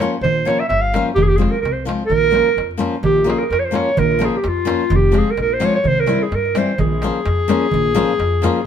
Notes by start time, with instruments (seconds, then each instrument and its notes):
Already playing: clarinet C#5
0.00 nylon-string guitar F3 A#3 C#4 F4, darbuka tek
0.14 darbuka tek
0.21 upright bass A#1, clarinet C5, darbuka dum
0.37 darbuka tek
0.45 nylon-string guitar F3 A#3 C#4 F4, clarinet C#5, darbuka tek
0.60 clarinet E5
0.69 upright bass G1, clarinet E5, darbuka tek
0.81 clarinet F5
0.94 nylon-string guitar F3 A#3 C#4 F4, darbuka tek
1.15 upright bass F1, clarinet G4, darbuka dum
1.22 clarinet G#4
1.28 clarinet G4, darbuka tek
1.36 nylon-string guitar F3 G#3 C4 F4, clarinet G#4
1.42 darbuka tek
1.51 clarinet A#4
1.61 upright bass C2, clarinet A#4
1.65 darbuka tek
1.72 clarinet C5
1.85 nylon-string guitar F3 G#3 C4 F4, darbuka tek
2.06 upright bass A#1, clarinet A#4
2.11 darbuka dum
2.31 nylon-string guitar F3 A#3 C#4 F4
2.35 darbuka tek
2.57 upright bass F2, darbuka tek
2.71 darbuka tek
2.78 nylon-string guitar F3 A#3 C#4 F4, darbuka tek
2.94 darbuka tek
3.03 upright bass A#1, clarinet G4, darbuka dum
3.18 darbuka tek
3.24 nylon-string guitar F3 A#3 C#4 F4
3.29 clarinet G#4, darbuka tek
3.39 clarinet G#4 A#4
3.47 upright bass F2, clarinet A#4
3.51 clarinet A#4, darbuka tek
3.60 clarinet C#5
3.65 clarinet C5
3.71 nylon-string guitar F3 A#3 C#4 F4
3.75 clarinet C#5, darbuka tek
3.89 darbuka tek
3.97 upright bass A#1, clarinet A#4, darbuka dum
4.12 darbuka tek
4.19 nylon-string guitar F3 A#3 C#4 F4, darbuka tek
4.25 clarinet G#4
4.37 clarinet G4
4.44 upright bass F2, darbuka tek
4.49 clarinet F4
4.65 nylon-string guitar F3 A#3 C#4 F4, darbuka tek
4.81 darbuka tek
4.90 upright bass F1, darbuka dum
4.96 clarinet G4
5.04 darbuka tek
5.12 nylon-string guitar F3 G#3 C4 F4, darbuka tek
5.18 clarinet G#4
5.31 clarinet A#4
5.37 upright bass A#1, darbuka tek
5.41 clarinet A#4
5.54 clarinet C5
5.60 nylon-string guitar F3 G#3 C4 F4, darbuka tek
5.65 clarinet C#5
5.74 clarinet C#5, darbuka tek
5.84 upright bass C2, clarinet C5, darbuka dum
5.98 clarinet A#4, darbuka tek
6.07 nylon-string guitar E3 G3 C4 E4, darbuka tek
6.21 clarinet G#4, darbuka tek
6.32 upright bass G2, clarinet A#4, darbuka tek
6.45 darbuka tek
6.55 nylon-string guitar E3 G3 C4 E4, clarinet C5, darbuka tek
6.69 darbuka tek
6.78 upright bass A#1, clarinet G#4, darbuka dum
6.92 darbuka tek
7.02 nylon-string guitar F3 A#3 C#4 F4, darbuka tek
7.26 upright bass F2, darbuka tek
7.48 nylon-string guitar F3 A#3 C#4 F4, darbuka tek
7.62 darbuka tek
7.71 upright bass A#1, darbuka dum
7.85 darbuka tek
7.95 nylon-string guitar F3 A#3 C#4 F4, darbuka tek
8.19 upright bass F2, darbuka tek
8.42 nylon-string guitar F3 A#3 C#4 F4, darbuka tek
8.57 darbuka tek